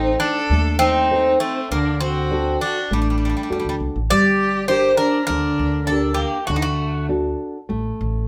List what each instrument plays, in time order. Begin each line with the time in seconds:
Already playing: upright bass A1, bouzouki C4, violin D#4, nylon-string guitar D#4 A4 C5
0.20 bouzouki D4, violin A4
0.50 upright bass D#2, nylon-string guitar A3
0.79 bouzouki C4, violin D#4
1.11 nylon-string guitar D#4 A4 C5
1.40 bouzouki A3, violin C4
1.71 upright bass D2, nylon-string guitar D3, bouzouki A#3, violin D4
2.01 bouzouki C4, violin F#4
2.31 nylon-string guitar D4 F#4 A4
2.61 bouzouki D4, violin F#4
2.91 upright bass A1, bouzouki G3, nylon-string guitar A3, violin D4
3.02 bouzouki G3
3.10 bouzouki G3
3.18 bouzouki G3
3.25 bouzouki G3
3.29 bouzouki G3
3.37 bouzouki G3
3.43 bouzouki G3
3.50 upright bass F#2, bouzouki G3, nylon-string guitar D4 F#4 A4
3.60 bouzouki G3
3.65 upright bass D2
3.69 bouzouki G3
3.80 upright bass C2
3.96 upright bass A1
4.10 upright bass G1, nylon-string guitar G3, violin G4, bouzouki D5
4.68 nylon-string guitar D4 G4 A#4, violin G4, bouzouki C5
4.97 violin D4, bouzouki A#4
5.25 violin D4, bouzouki A#4
5.29 upright bass D2, nylon-string guitar D3
5.59 upright bass D2
5.85 violin D4, bouzouki A4
5.90 nylon-string guitar D4 G4 A#4
6.14 violin A#3, bouzouki G4
6.45 upright bass D2, violin A3, bouzouki F#4
6.50 nylon-string guitar D3, violin G3
6.56 bouzouki D#4
6.61 violin A3, bouzouki F#4
7.09 nylon-string guitar D4 F#4 A4
7.69 upright bass A1, nylon-string guitar A3
8.01 upright bass A1